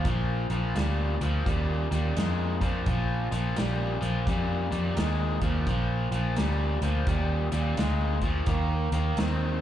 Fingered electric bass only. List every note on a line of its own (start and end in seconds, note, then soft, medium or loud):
0.05 0.47 A#1 loud
0.50 0.73 A#1 medium
0.75 1.17 D2 medium
1.21 1.44 D2 medium
1.46 1.87 D#2 medium
1.91 2.14 D#2 medium
2.17 2.83 F2 medium
2.87 3.28 A#1 medium
3.32 3.55 A#1 medium
3.57 3.98 A#1 medium
4.02 4.25 A#1 medium
4.27 4.68 F2 medium
4.72 4.95 F2 medium
4.97 5.38 D#2 medium
5.42 5.65 D#2 medium
5.67 6.08 A#1 medium
6.11 6.34 A#1 medium
6.37 6.78 D2 medium
6.82 7.05 D2 medium
7.07 7.48 D#2 medium
7.52 7.75 D#2 medium
7.78 8.43 D2 medium
8.47 8.88 D#2 medium
8.92 9.15 D#2 medium
9.17 9.58 D#2 medium